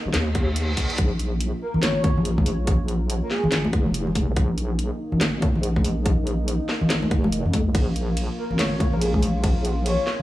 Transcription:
Already playing: analog synth pad A#3 D#4
0.06 wobble bass G#1
0.14 wobble bass D#2, snare, clap, closed hi-hat, reverse cymbal
0.35 kick, closed hi-hat
0.56 closed hi-hat
0.77 kick, open hi-hat
0.90 closed hi-hat
0.98 wobble bass A#1, analog synth pad A#3 F4, kick, closed hi-hat
1.19 closed hi-hat
1.41 closed hi-hat
1.62 soft synth lead A#4
1.74 wobble bass G#1, low conga
1.83 soft synth lead C#5, snare, clap, closed hi-hat, high conga
2.04 kick, closed hi-hat, high conga
2.17 wobble bass A#1, low conga
2.25 closed hi-hat
2.38 kick, high conga, low conga
2.46 open hi-hat
2.67 kick, closed hi-hat
2.88 closed hi-hat
3.10 closed hi-hat
3.23 soft synth lead A#4
3.31 soft synth lead G#4, snare
3.44 wobble bass G#1, low conga
3.52 snare, clap, closed hi-hat
3.65 high conga
3.73 wobble bass F1, kick, closed hi-hat
3.86 low conga
3.94 closed hi-hat
4.07 low conga
4.15 kick, open hi-hat, high conga
4.29 wobble bass A#1
4.36 wobble bass A#1, analog synth pad D#4, kick, closed hi-hat
4.58 closed hi-hat
4.79 closed hi-hat
5.12 wobble bass G#1, low conga
5.21 snare, clap, closed hi-hat, high conga
5.42 kick, closed hi-hat, high conga
5.55 wobble bass A#1, low conga
5.63 closed hi-hat
5.76 kick, high conga, low conga
5.84 open hi-hat
6.06 kick, closed hi-hat
6.27 closed hi-hat
6.48 closed hi-hat
6.69 snare
6.81 wobble bass G#1, low conga
6.90 snare, clap, closed hi-hat
7.02 high conga
7.11 wobble bass F1, kick, closed hi-hat
7.24 high conga, low conga
7.32 closed hi-hat
7.45 wobble bass F2, low conga
7.53 kick, open hi-hat, high conga
7.66 wobble bass A#1
7.75 wobble bass A#1, analog synth pad F4, kick, closed hi-hat, ride
7.96 closed hi-hat
8.17 closed hi-hat, ride
8.38 soft synth lead A#4
8.51 wobble bass G#1, low conga
8.59 soft synth lead C#5, snare, clap, closed hi-hat, ride, high conga
8.80 kick, closed hi-hat, high conga
8.93 wobble bass A#1, soft synth lead A#4, low conga
9.01 soft synth lead G#4, closed hi-hat, ride
9.14 soft synth lead G#4, kick, high conga, low conga
9.23 open hi-hat
9.44 kick, closed hi-hat, ride
9.65 closed hi-hat
9.86 soft synth lead C#5, closed hi-hat, ride
10.07 snare

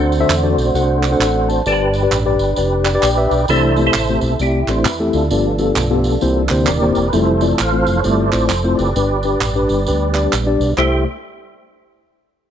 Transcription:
Already playing: fingered electric bass D2, tine electric piano D3 D4 F#4 A4 C5 F#5, tonewheel organ A3 C4 D4 F#4 C5
0.12 tambourine
0.20 tine electric piano D4 F#4 A4 C5 E5
0.29 fingered electric bass E2, clap, tambourine
0.43 tine electric piano D4 F#4 A4 C5 D5
0.57 fingered electric bass B1, tambourine
0.74 fingered electric bass C2, tine electric piano D4 F#4 A4 C5 F#5, tambourine
1.03 clap, tambourine
1.12 tine electric piano D4 F#4 A4 C5 F#5
1.20 fingered electric bass A1, tine electric piano A4 F#5, clap, tambourine
1.49 tine electric piano C5 A5, tambourine
1.66 fingered electric bass G1, tine electric piano G2 G4 B4 D5, tonewheel organ D4 G4 A4, tambourine
1.72 tonewheel organ B4
1.93 tambourine
2.03 tine electric piano G4 B4 D5
2.11 fingered electric bass A1, clap, tambourine
2.26 tine electric piano G4 B4 D5
2.39 fingered electric bass G1, tambourine
2.56 fingered electric bass F1, tine electric piano G4 B4 D5, tambourine
2.85 tine electric piano D5, clap, tambourine
2.95 tine electric piano G4 B4 D5
3.03 fingered electric bass A#1, tonewheel organ G4 B4 D5, tine electric piano G5, clap, tambourine
3.17 tine electric piano G4 B4 E5
3.31 fingered electric bass B1, tine electric piano G5, tambourine
3.48 fingered electric bass C2, tine electric piano C3 A3 C4 E4 G4 C5, tonewheel organ E3 A3 D4 E4 A4 C5, tambourine
3.76 tine electric piano A3 C4 E4 G4 A4, tambourine
3.87 tonewheel organ E4 A4 C5
3.94 fingered electric bass A1, clap, tambourine
4.09 tine electric piano A3 C4 E4 G4 C5
4.21 fingered electric bass B1, tonewheel organ A4, tambourine
4.39 fingered electric bass C2, tine electric piano A3 C4 E4 G4 D5, tonewheel organ E4 G4, tambourine
4.67 fingered electric bass A1, tonewheel organ E3 A3 D4 C5, tine electric piano A3 C4 E4 G4 C5, clap, tambourine
4.85 fingered electric bass E2, tonewheel organ B4, clap, tambourine
5.00 tine electric piano A3 C4 E4 G4 A4
5.13 fingered electric bass D2, tonewheel organ D4 F4 A4, tambourine
5.31 fingered electric bass G1, tine electric piano G2 B3 D4 F4 G4 D5, tonewheel organ F3 A3 B3, tambourine
5.58 tine electric piano B3 D4 F4 G4 A4, tambourine
5.76 fingered electric bass B1, clap, tambourine
5.91 tine electric piano B3 D4 F4 G4 A4
6.04 tambourine
6.21 fingered electric bass C2, tine electric piano C3 A#3 C4 E4 G4 C5, tonewheel organ E3 A#3 D4, tambourine
6.49 fingered electric bass D2, tine electric piano A#3 C4 E4 G4 C5, clap, tambourine
6.67 fingered electric bass D#1, tonewheel organ G4 A#4 D5, clap, tambourine
6.82 tine electric piano A#3 C4 E4 G4 C5
6.95 fingered electric bass E1, tambourine
7.08 tonewheel organ B4
7.13 fingered electric bass F1, tonewheel organ E3 G3 A3 E4 A4 C5, tine electric piano A3 C4 E4 F4 C5, tambourine
7.41 tine electric piano A3 C4 E4 F4 D5, tambourine
7.48 tonewheel organ C5
7.59 fingered electric bass A1, tonewheel organ A4 C5 F5, clap, tambourine
7.73 tine electric piano A3 C4 E4 F4 C5
7.87 fingered electric bass F1, tambourine
8.00 tonewheel organ C#5
8.04 fingered electric bass G1, tonewheel organ G3 A3 E4 A4 D5, tine electric piano A3 C4 E4 F4 C5, tambourine
8.32 fingered electric bass A1, tine electric piano A3 C4 E4 F4 C5, clap, tambourine
8.47 fingered electric bass F1, tonewheel organ C5, clap, tambourine
8.64 tine electric piano A3 C4 E4 F4 C5
8.75 fingered electric bass F#1, tonewheel organ G4 B4 D5, tambourine
8.96 fingered electric bass G1, tine electric piano G2 D4 G4 B4, tambourine
9.23 tine electric piano D4 G4 B4, tambourine
9.41 fingered electric bass A1, clap, tambourine
9.56 tine electric piano D4 G4 B4
9.68 fingered electric bass G1, tonewheel organ G3 B3 D4, tambourine
9.87 fingered electric bass D2, tine electric piano D4 G4 B4, tambourine
10.14 tine electric piano D4 G4 D5, clap, tambourine
10.33 fingered electric bass A#1, clap, tambourine
10.47 tine electric piano D4 G4 D5
10.60 fingered electric bass B1, tambourine
10.77 fingered electric bass C2, tine electric piano C2 A3 E4 G4 C5, tonewheel organ A3 E4 G4 C5, clap

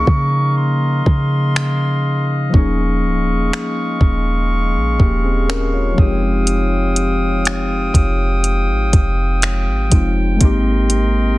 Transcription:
Already playing: synth keys F3 A#3 C#4 D#4 G#4, woodwind section A#4 D#5 F5 C#6
0.07 808-style bass C#3, kick
0.57 woodwind section C6
1.06 808-style bass C#3, kick
1.56 finger snap
2.50 synth keys F3 A#3
2.54 808-style bass D#1, woodwind section G#3 C#6, synth keys C#4 D#4, kick
2.58 synth keys G#4
3.04 808-style bass C#1
3.28 808-style bass D#1
3.53 finger snap
4.01 808-style bass D#1, kick
4.75 808-style bass A#1
5.00 808-style bass D#1, synth keys A#3 G4, kick
5.24 synth keys C4 G#4
5.49 synth keys C#4 A#4, finger snap
5.74 synth keys F4 C#5
5.94 synth keys F3 G#3
5.98 808-style bass F1, synth keys C4 D#4, woodwind section G5 D#6, kick
6.02 synth keys G4
6.47 closed hi-hat
6.96 closed hi-hat
7.45 finger snap, closed hi-hat
7.94 808-style bass F1, kick, closed hi-hat
8.44 closed hi-hat
8.69 808-style bass G#1
8.93 808-style bass F1, kick, closed hi-hat
9.42 finger snap, closed hi-hat
9.68 808-style bass G#1
9.89 808-style bass F1, synth keys F3 G#3 C4 D#4, kick, closed hi-hat
9.94 synth keys F4
10.36 synth keys G#3 A#3
10.41 808-style bass G#1, synth keys C4 D#4, woodwind section A#4 D#5 C6, kick, closed hi-hat
10.45 synth keys G4
10.90 closed hi-hat

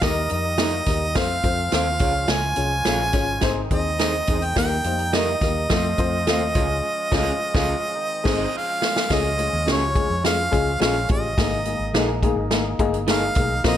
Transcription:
0.01 fingered electric bass D#2, tonewheel organ D#3 G3 A#3 D#4, upright piano D#4 G4 A#4 D#5, harmonica D#5, kick, snare, closed hi-hat
0.30 fingered electric bass F2, upright piano D#4 G4 A#4 D#5, harmonica D#5, closed hi-hat
0.58 upright piano D#4 G4 A#4 D#5, clean electric guitar D#4 G4 A#4 D#5, snare, closed hi-hat
0.86 fingered electric bass D#2, upright piano D#4 G4 A#4 D#5, kick, snare, closed hi-hat
1.15 fingered electric bass F2, tonewheel organ F3 A3 C4 F4, upright piano C4 F4 A4 C5, harmonica F5, kick, snare, closed hi-hat
1.43 fingered electric bass F2, upright piano C4 F4 A4 C5, kick, closed hi-hat
1.71 fingered electric bass D#2, upright piano C4 F4 A4 C5, clean electric guitar F4 A4 C5 F5, harmonica F5, snare, closed hi-hat
1.99 fingered electric bass C#2, tonewheel organ G#3 C#4 F4, upright piano C#4 F4 G#4 C#5, clean electric guitar F4 G#4 C#5 F5, kick, closed hi-hat
2.28 fingered electric bass C#2, harmonica G#5, snare, closed hi-hat
2.56 fingered electric bass C2, upright piano C#4 F4 G#4 C#5, closed hi-hat
2.85 fingered electric bass A#1, upright piano C#4 F4 G#4 C#5, clean electric guitar F4 G#4 C#5 F5, snare, closed hi-hat
3.13 fingered electric bass G#1, upright piano C#4 F4 G#4 C#5, kick, snare, closed hi-hat
3.41 fingered electric bass G#1, tonewheel organ D#3 C4 D#4, upright piano C4 D#4 G#4 C5, kick, snare, closed hi-hat
3.71 fingered electric bass D#2, upright piano C4 D#4 G#4 C5, harmonica D#5, kick, closed hi-hat
3.99 upright piano C4 D#4 G#4 C5, clean electric guitar D#4 G#4 C5 D#5, snare, closed hi-hat
4.27 fingered electric bass E2, upright piano C4 D#4 G#4 C5, clean electric guitar D#4 G#4 C5 D#5, kick, closed hi-hat
4.42 harmonica G5, closed hi-hat
4.54 fingered electric bass D#2, tonewheel organ D#3 G3 A#3, upright piano A#3 D#4 G4 A#4, harmonica G5, kick, snare, closed hi-hat
4.84 fingered electric bass F2, upright piano A#3 D#4 G4 C5, closed hi-hat
4.99 closed hi-hat
5.12 upright piano A#3 D#4 G4 A#4, clean electric guitar D#4 G4 A#4 D#5, harmonica D#5, snare, closed hi-hat
5.41 fingered electric bass D#2, upright piano A#3 D#4 G4 A#4, kick, snare, closed hi-hat
5.69 fingered electric bass F2, tonewheel organ F3 A3 C4 F4, upright piano A3 C4 F4 A4, kick, snare, closed hi-hat
5.97 fingered electric bass F2, upright piano A3 C4 F4 C5, kick, closed hi-hat
6.26 fingered electric bass D#2, upright piano A3 C4 F4 A4, clean electric guitar F4 A4 C5 F5, snare, closed hi-hat
6.53 fingered electric bass C#2, tonewheel organ G#3 C#4, upright piano G#3 C#4 F4 G#4, clean electric guitar F4 G#4 C#5, kick, closed hi-hat
6.57 clean electric guitar F5
7.11 fingered electric bass C#2, upright piano G#3 C#4 F4 G#4, clean electric guitar F4 G#4 C#5 F5, kick, snare, crash
7.54 fingered electric bass C#2, upright piano G#3 C#4 F4 G#4, clean electric guitar F4 G#4 C#5 F5, kick, snare
7.95 tonewheel organ D#3 G#3 C4 D#4
8.24 fingered electric bass G#1, upright piano G#3 C4 D#4 G#4, clean electric guitar D#4 G#4 C5 D#5, kick, snare, crash
8.52 tonewheel organ F3 C#4 F4
8.57 harmonica F5
8.82 snare
8.96 snare
9.09 fingered electric bass C#2, tonewheel organ F3 G#3 C#4 F4, upright piano G#3 C#4 F4 G#4, kick, snare, closed hi-hat
9.13 harmonica D#5
9.38 upright piano G#3 C#4 F4 G#4, closed hi-hat
9.53 fingered electric bass D#2
9.66 fingered electric bass C#2, upright piano G#3 C#4 F4 G4, clean electric guitar C#4 F4 G#4 C#5, snare, closed hi-hat
9.71 harmonica C#5
9.95 upright piano G#3 C#4 F4 G#4, kick, closed hi-hat
10.10 fingered electric bass F2
10.24 upright piano G#3 C#4 F4 G#4, harmonica F5, snare, closed hi-hat
10.51 fingered electric bass C#2, upright piano G#3 C#4 F4 G#4, kick, closed hi-hat
10.80 fingered electric bass A#1, upright piano G#3 C#4 F4 G#4, clean electric guitar C#4 F4 G#4 C#5, harmonica F5, snare, closed hi-hat
11.09 fingered electric bass A1, upright piano G#3 C#4 F4 G4, harmonica D#5, kick, closed hi-hat
11.37 fingered electric bass G#1, tonewheel organ D#3 A#3 D#4, upright piano G#3 A#3 D#4 G#4, kick, snare, closed hi-hat
11.65 upright piano G#3 A#3 D#4 G#4, closed hi-hat
11.79 fingered electric bass G#1
11.93 fingered electric bass A#1, upright piano G#3 A#3 D#4 G#4, clean electric guitar D#4 G#4 A#4 D#5, snare, closed hi-hat
12.23 upright piano G#3 A#3 D#4 G#4, kick, closed hi-hat
12.36 fingered electric bass G#1
12.51 upright piano G#3 A#3 D#4 G#4, snare, closed hi-hat
12.79 fingered electric bass G1, upright piano G#3 A#3 D#4 G#4, kick, closed hi-hat
12.94 closed hi-hat
13.07 upright piano G#3 A#3 D#4 G#4, clean electric guitar D#4 G#4 A#4 D#5, harmonica F5, snare, closed hi-hat
13.35 fingered electric bass B1, upright piano G#3 A#3 D#4 G#4, kick, closed hi-hat
13.64 fingered electric bass A#1, tonewheel organ F3 A#3 C4 F4, upright piano A#3 C4 F4 A#4, harmonica D#5, kick, snare, closed hi-hat

